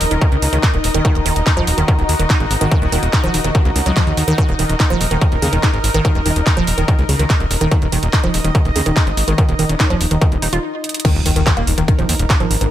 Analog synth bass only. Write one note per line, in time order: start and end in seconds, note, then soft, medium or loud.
0.01 0.07 D#1 loud
0.11 0.17 D#1 medium
0.32 0.38 C#2 medium
0.42 0.48 C#2 loud
0.53 0.59 C#2 medium
0.74 0.79 D#1 medium
0.84 0.90 D#1 loud
0.94 1.00 D#1 medium
1.15 1.21 D#1 medium
1.26 1.31 D#1 loud
1.36 1.42 D#1 medium
1.57 1.63 D#1 medium
1.67 1.73 D#1 loud
1.78 1.84 D#1 medium
1.99 2.04 D#1 medium
2.09 2.15 D#2 loud
2.19 2.25 D#1 medium
2.40 2.46 G#1 medium
2.51 2.57 G#1 loud
2.61 2.67 G#1 medium
2.82 2.88 D#1 medium
2.92 2.98 D#1 loud
3.03 3.09 D#1 medium
3.24 3.29 D#1 medium
3.34 3.40 D#1 loud
3.44 3.50 D#1 medium
3.65 3.71 C#2 medium
3.76 3.82 C#2 loud
3.86 3.92 C#2 medium
4.07 4.13 D#2 medium
4.17 4.23 D#2 loud
4.28 4.34 D#2 medium
4.49 4.54 D#1 medium
4.59 4.65 D#1 loud
4.69 4.75 D#1 medium
4.90 4.96 D#1 medium
5.01 5.07 D#1 loud
5.11 5.17 D#1 medium
5.32 5.38 D#1 medium
5.42 5.48 D#2 loud
5.53 5.59 D#1 medium
5.74 5.79 G#1 medium
5.84 5.90 G#1 loud
5.94 6.00 G#1 loud
6.15 6.21 D#1 medium
6.26 6.32 D#1 loud
6.36 6.42 D#1 medium
6.57 6.63 D#1 medium
6.67 6.73 D#1 loud
6.78 6.84 D#1 medium
6.99 7.04 C#2 medium
7.09 7.15 C#2 loud
7.19 7.25 C#2 medium
7.40 7.46 D#1 medium
7.51 7.57 D#1 loud
7.61 7.67 D#1 medium
7.82 7.88 D#1 medium
7.92 7.98 D#1 loud
8.03 8.09 D#1 medium
8.24 8.29 D#1 medium
8.34 8.40 D#1 loud
8.44 8.50 D#1 medium
8.65 8.71 D#1 medium
8.76 8.82 D#2 medium
8.86 8.92 D#1 medium
9.07 9.13 G#1 medium
9.17 9.23 G#1 loud
9.28 9.34 G#1 medium
9.49 9.54 D#1 medium
9.59 9.65 D#1 loud
9.69 9.75 D#1 loud
9.90 9.96 D#1 medium
10.01 10.07 D#1 loud
10.11 10.17 D#1 medium
10.32 10.38 D#1 medium
10.42 10.48 D#1 loud
10.53 10.59 D#1 medium
11.15 11.21 D#1 medium
11.26 11.32 D#1 loud
11.36 11.42 D#1 medium
11.57 11.63 D#1 medium
11.67 11.73 D#1 loud
11.78 11.84 D#1 medium
11.99 12.04 D#1 medium
12.09 12.15 D#2 loud
12.19 12.25 D#1 medium
12.40 12.46 G#1 medium
12.51 12.57 G#1 loud
12.61 12.67 G#1 medium